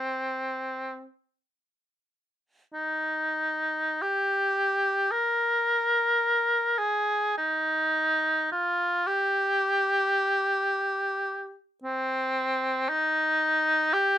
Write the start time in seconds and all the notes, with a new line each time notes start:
Already playing: C4
2.74 D#4
4.02 G4
5.11 A#4
6.78 G#4
7.38 D#4
8.52 F4
9.07 G4
11.83 C4
12.89 D#4
13.93 G4